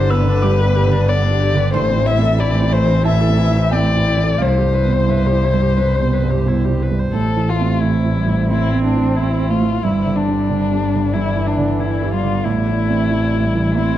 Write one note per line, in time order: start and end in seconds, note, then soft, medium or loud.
0.00 1.76 G1 medium
0.00 0.39 G2 medium
0.00 0.22 D3 medium
0.00 1.76 D3 medium
0.00 1.74 G3 medium
0.00 0.65 B3 medium
0.00 0.13 D4 medium
0.00 1.74 D4 medium
0.00 0.35 G4 medium
0.00 1.74 G4 medium
0.00 0.12 C5 medium
0.00 0.42 D6 loud
0.10 0.29 B3 medium
0.10 1.11 B4 medium
0.10 0.41 E6 medium
0.22 0.57 D3 medium
0.28 0.44 D4 medium
0.42 1.70 G2 medium
0.42 0.62 G4 medium
0.42 1.04 D6 medium
0.61 0.77 B4 medium
0.65 1.00 B3 medium
0.76 0.93 G4 medium
0.87 1.22 D3 medium
0.92 1.09 D4 medium
1.07 1.26 B3 medium
1.07 1.44 B3 medium
1.07 1.73 D5 medium
1.25 1.41 D4 medium
1.31 1.65 G4 medium
1.40 1.58 G4 medium
1.54 1.75 D3 medium
1.54 1.73 B4 medium
1.73 4.41 A1 medium
1.73 3.02 A2 medium
1.73 4.43 E3 medium
1.73 1.91 A3 medium
1.73 4.39 E4 medium
1.73 4.39 A4 medium
1.73 7.13 C5 medium
1.73 2.08 C5 medium
1.73 2.35 C6 medium
1.90 2.08 C4 medium
1.96 2.31 E3 medium
2.06 2.24 E4 medium
2.06 2.42 E5 medium
2.17 2.53 C4 soft
2.22 2.41 A4 medium
2.39 2.75 E3 medium
2.39 2.57 E4 medium
2.39 2.75 D5 medium
2.39 3.01 B5 medium
2.55 2.73 C4 medium
2.62 2.97 E4 soft
2.72 2.90 A3 soft
2.72 3.06 C5 medium
2.84 3.19 E3 soft
2.89 3.04 C4 medium
3.05 4.36 A2 medium
3.05 3.23 E4 medium
3.05 3.74 E5 medium
3.05 3.68 A5 medium
3.21 3.40 A4 medium
3.28 3.63 C4 soft
3.39 3.58 E4 medium
3.50 3.86 E3 soft
3.56 3.74 C4 medium
3.71 3.91 A3 medium
3.71 4.08 C4 soft
3.71 4.43 D5 medium
3.71 4.35 G5 medium
3.90 4.08 C4 soft
3.94 4.30 E4 soft
4.07 4.25 E4 soft
4.17 4.40 E3 soft
4.23 4.40 A4 soft
4.38 7.14 C2 medium
4.38 5.73 C2 medium
4.38 6.95 G3 medium
4.38 4.60 E4 medium
4.38 7.14 G4 medium
4.38 6.81 C5 medium
4.38 5.04 F5 medium
4.58 4.99 G2 soft
4.58 4.75 G4 medium
4.74 4.94 B4 medium
4.85 5.22 B2 soft
4.92 5.11 C5 soft
5.08 5.45 G2 soft
5.08 5.28 B4 medium
5.08 6.76 E5 medium
5.26 5.45 G4 soft
5.31 5.68 E4 soft
5.43 5.63 E4 soft
5.54 5.91 G2 soft
5.62 5.77 G4 soft
5.78 7.11 C2 soft
5.78 5.97 B4 soft
5.96 6.37 B2 soft
5.96 6.15 C5 soft
6.13 6.32 B4 soft
6.23 6.60 G2 soft
6.30 6.49 G4 soft
6.46 6.83 B2 soft
6.46 6.66 E4 soft
6.65 7.05 E4 soft
6.65 6.84 G4 soft
6.82 7.00 B4 soft
6.91 7.14 G2 soft
6.99 7.15 C5 soft
7.13 9.85 A1 medium
7.13 8.46 A2 soft
7.13 9.79 C4 medium
7.13 7.51 A4 medium
7.13 9.79 C5 medium
7.13 9.79 E5 medium
7.37 7.73 E3 soft
7.48 8.18 A3 medium
7.48 7.83 F4 soft
7.60 7.96 C4 soft
7.82 8.18 E3 soft
7.82 8.50 E4 soft
8.04 8.41 E4 soft
8.16 8.52 G3 medium
8.28 8.64 E3 soft
8.50 9.80 A2 soft
8.50 9.52 C4 medium
8.50 8.83 E4 soft
8.74 9.09 C4 soft
8.85 9.19 D4 soft
8.95 9.31 E3 soft
9.17 9.53 C4 soft
9.17 9.52 E4 soft
9.39 9.75 E4 soft
9.50 9.83 A3 medium
9.50 9.85 F4 soft
9.62 9.84 E3 soft
9.82 12.47 G1 soft
9.82 11.11 G2 soft
9.82 10.80 G3 medium
9.82 12.45 B3 medium
9.82 12.45 D4 medium
9.82 10.18 E4 soft
9.82 12.45 D5 medium
10.06 10.41 D3 soft
10.17 11.15 D4 soft
10.28 10.63 D4 soft
10.50 10.84 D3 soft
10.72 11.06 G4 soft
10.83 11.14 G3 medium
10.94 11.28 D3 soft
11.14 12.42 G2 soft
11.14 12.14 E3 medium
11.14 11.48 E4 soft
11.36 11.71 D4 soft
11.47 11.82 D4 soft
11.58 11.93 D3 soft
11.80 12.15 D4 soft
11.80 12.13 E4 soft
12.02 12.37 G4 soft
12.12 12.45 G3 medium
12.12 12.46 F4 soft
12.23 12.45 D3 soft
12.44 13.98 A1 medium
12.44 13.74 A2 soft
12.44 13.98 A3 medium
12.44 13.77 E4 medium
12.44 13.98 C5 medium
12.44 13.98 E5 medium
12.68 13.02 E3 soft
12.77 13.45 A3 medium
12.89 13.24 C4 soft
13.11 13.46 E3 soft
13.33 13.69 E4 soft
13.44 13.80 G3 medium
13.55 13.91 E3 soft
13.77 13.98 A2 soft
13.77 13.98 C4 medium
13.77 13.98 E4 soft